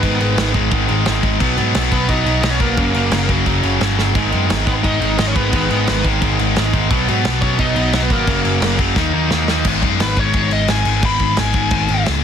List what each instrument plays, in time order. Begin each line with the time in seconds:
Already playing: lead electric guitar B3 B4
0.03 picked electric bass G#1, overdriven electric guitar G#2 D#3 G#3, distorted electric guitar B3 D#4, kick, crash
0.20 picked electric bass G#1, overdriven electric guitar G#2 D#3 G#3, crash
0.38 picked electric bass G#1, overdriven electric guitar G#2 D#3 G#3, snare, crash
0.54 overdriven electric guitar G#2 D#3 G#3, distorted electric guitar B3 D#4, kick, crash
0.71 picked electric bass G#1, overdriven electric guitar G#2 D#3 G#3, kick, crash
0.88 picked electric bass G#1, overdriven electric guitar G#2 D#3 G#3, crash
1.05 picked electric bass G#1, overdriven electric guitar G#2 D#3 G#3, snare, crash
1.22 overdriven electric guitar G#2 D#3 G#3, kick, crash
1.39 picked electric bass B1, overdriven electric guitar B2 F#3 B3, distorted electric guitar D#4, kick, crash
1.57 picked electric bass G#2, overdriven electric guitar B2 F#3 B3, crash
1.74 picked electric bass B1, overdriven electric guitar B2 F#3 B3, snare, crash
1.91 picked electric bass B1, overdriven electric guitar B2 F#3 B3, lead electric guitar B3 B4, distorted electric guitar D#4, kick, crash
2.08 picked electric bass B1, overdriven electric guitar B2 F#3 B3, lead electric guitar D#4 D#5, kick, crash
2.25 picked electric bass B1, overdriven electric guitar B2 F#3 B3, crash
2.43 picked electric bass B1, overdriven electric guitar B2 F#3 B3, lead electric guitar D#4 D#5, snare, crash
2.51 lead electric guitar C#4 C#5
2.60 picked electric bass B1, overdriven electric guitar B2 F#3 B3, lead electric guitar A#3 A#4, kick, crash
2.77 picked electric bass F#1, overdriven electric guitar F#2 C#3 F#3, distorted electric guitar A#3 C#4, kick, crash
2.94 picked electric bass F#1, overdriven electric guitar F#2 C#3 F#3, crash
3.11 picked electric bass F#1, overdriven electric guitar F#2 C#3 F#3, snare, crash
3.28 overdriven electric guitar F#2 C#3 F#3, distorted electric guitar A#3 C#4, kick, crash
3.45 picked electric bass F#1, overdriven electric guitar F#2 C#3 F#3, kick, crash
3.63 picked electric bass F#1, overdriven electric guitar F#2 C#3 F#3, crash
3.80 picked electric bass G1, overdriven electric guitar F#2 C#3 F#3, snare, crash
3.98 overdriven electric guitar F#2 C#3 F#3, snare
4.15 picked electric bass G#1, overdriven electric guitar G#2 D#3 G#3, distorted electric guitar B3 D#4, kick, crash
4.32 picked electric bass F#2, overdriven electric guitar G#2 D#3 G#3, crash
4.50 picked electric bass G#1, overdriven electric guitar G#2 D#3 G#3, snare, crash
4.66 picked electric bass G#1, overdriven electric guitar G#2 D#3 G#3, distorted electric guitar B3 D#4, lead electric guitar B3 B4, kick, crash
4.84 picked electric bass G#1, overdriven electric guitar G#2 D#3 G#3, lead electric guitar D#4 D#5, kick, crash
5.01 picked electric bass G#1, overdriven electric guitar G#2 D#3 G#3, crash
5.18 picked electric bass G#1, overdriven electric guitar G#2 D#3 G#3, lead electric guitar D#4 D#5, snare, crash
5.28 lead electric guitar C#4 C#5
5.35 picked electric bass G#1, overdriven electric guitar G#2 D#3 G#3, lead electric guitar B3 B4, kick, crash
5.53 picked electric bass G#1, overdriven electric guitar G#2 D#3 G#3, distorted electric guitar B3 D#4, kick, crash
5.70 picked electric bass G#1, overdriven electric guitar G#2 D#3 G#3, crash
5.87 picked electric bass G#1, overdriven electric guitar G#2 D#3 G#3, snare, crash
6.04 overdriven electric guitar G#2 D#3 G#3, distorted electric guitar B3 D#4, kick, crash
6.22 picked electric bass G#1, overdriven electric guitar G#2 D#3 G#3, kick, crash
6.39 picked electric bass G#1, overdriven electric guitar G#2 D#3 G#3, crash
6.56 picked electric bass G#1, overdriven electric guitar G#2 D#3 G#3, snare, crash
6.73 overdriven electric guitar G#2 D#3 G#3, kick, crash
6.91 picked electric bass B1, overdriven electric guitar B2 F#3 B3, distorted electric guitar D#4, kick, crash
7.08 picked electric bass G#2, overdriven electric guitar B2 F#3 B3, crash
7.25 picked electric bass B1, overdriven electric guitar B2 F#3 B3, snare, crash
7.41 picked electric bass B1, overdriven electric guitar B2 F#3 B3, lead electric guitar C#4 C#5, distorted electric guitar D#4, kick, crash
7.58 picked electric bass B1, overdriven electric guitar B2 F#3 B3, lead electric guitar D#4 D#5, kick, crash
7.76 picked electric bass B1, overdriven electric guitar B2 F#3 B3, crash
7.93 picked electric bass B1, overdriven electric guitar B2 F#3 B3, lead electric guitar D#4 D#5, snare, crash
8.02 lead electric guitar B3 B4
8.10 picked electric bass G#1, overdriven electric guitar B2 F#3 B3, lead electric guitar A#3 A#4, kick, crash
8.27 picked electric bass F#1, overdriven electric guitar F#2 C#3 F#3, distorted electric guitar A#3 C#4, kick, crash
8.45 picked electric bass F#1, overdriven electric guitar F#2 C#3 F#3, crash
8.61 picked electric bass F#1, overdriven electric guitar F#2 C#3 F#3, snare, crash
8.78 overdriven electric guitar F#2 C#3 F#3, distorted electric guitar A#3 C#4, kick, crash
8.95 picked electric bass D#2, overdriven electric guitar D#3 A#3 D#4, distorted electric guitar F#3, kick, snare
9.13 picked electric bass D#2, overdriven electric guitar D#3 A#3 D#4
9.30 picked electric bass D#2, overdriven electric guitar D#3 A#3 D#4, snare
9.48 overdriven electric guitar D#3 A#3 D#4, distorted electric guitar F#3, snare
9.65 picked electric bass G#1, overdriven electric guitar G#2 D#3 G#3, distorted electric guitar B3 D#4, kick, crash
9.82 picked electric bass F#2, overdriven electric guitar G#2 D#3 G#3, kick, crash
9.99 picked electric bass G#1, overdriven electric guitar G#2 D#3 G#3, lead electric guitar B4, snare, crash
10.16 picked electric bass G#1, overdriven electric guitar G#2 D#3 G#3, distorted electric guitar B3 D#4, lead electric guitar C#5, kick, crash
10.33 picked electric bass G#1, overdriven electric guitar G#2 D#3 G#3, kick, crash
10.51 picked electric bass G#1, overdriven electric guitar G#2 D#3 G#3, lead electric guitar D#5, crash
10.68 picked electric bass G#1, overdriven electric guitar G#2 D#3 G#3, lead electric guitar G#5, snare, crash
10.85 picked electric bass G#1, overdriven electric guitar G#2 D#3 G#3, crash
11.03 picked electric bass G#1, overdriven electric guitar G#2 D#3 G#3, distorted electric guitar B3 D#4, lead electric guitar B5, kick, crash
11.19 picked electric bass G#1, overdriven electric guitar G#2 D#3 G#3, kick, crash
11.37 picked electric bass G#1, overdriven electric guitar G#2 D#3 G#3, lead electric guitar G#5, snare, crash
11.53 overdriven electric guitar G#2 D#3 G#3, distorted electric guitar B3 D#4, kick, crash
11.71 picked electric bass G#1, overdriven electric guitar G#2 D#3 G#3, kick, crash
11.89 picked electric bass G#1, overdriven electric guitar G#2 D#3 G#3, crash
12.06 picked electric bass C#2, overdriven electric guitar G#2 D#3 G#3, snare, crash